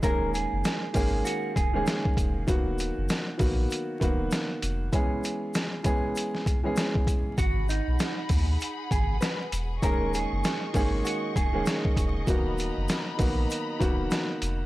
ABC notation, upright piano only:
X:1
M:4/4
L:1/16
Q:"Swing 16ths" 1/4=98
K:D#phr
V:1 name="Upright piano"
[D,G,A,CG]6 [D,G,A,CG]4- [D,G,A,CG] [D,G,A,CG]4- [D,G,A,CG] | [D,F,A,B,F]6 [D,F,A,B,F]4 [D,F,A,B,F]6 | [E,G,B,CG]6 [E,G,B,CG]4- [E,G,B,CG] [E,G,B,CG]4- [E,G,B,CG] | z16 |
[D,G,A,CG]6 [D,G,A,CG]4- [D,G,A,CG] [D,G,A,CG]4- [D,G,A,CG] | [D,F,A,B,F]6 [D,F,A,B,F]4 [D,F,A,B,F]6 |]